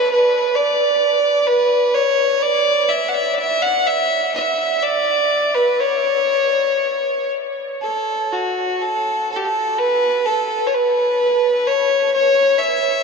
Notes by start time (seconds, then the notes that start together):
Already playing: B4
0.11 B4
0.55 D5
1.47 B4
1.94 C#5
2.42 D5
2.89 E5
3.08 F#5
3.14 E5
3.34 D5
3.38 E5
3.62 F#5
3.87 E5
4.34 E5
4.83 D5
5.55 B4
5.80 C#5
7.82 A4
8.33 F#4
8.82 A4
9.31 A4
9.36 G4
9.45 A4
9.78 B4
10.26 A4
10.67 C#5
10.74 B4
11.67 C#5
12.14 C#5
12.59 E5